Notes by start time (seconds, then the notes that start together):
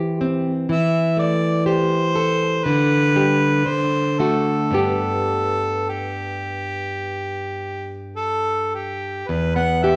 Already playing: E3 G4 C5
0.21 C4
0.69 E3 E5
1.17 A3 D5
1.66 G4 C5
2.15 A4
2.64 D3 B4
3.16 G3 G4
3.66 D3 C5
4.19 A3 F#4 A4
4.71 G2 B3 G4
4.77 A4
5.89 G4
8.16 A4
8.75 G4
9.28 E2 B4
9.55 B3 F#5
9.83 G4 E5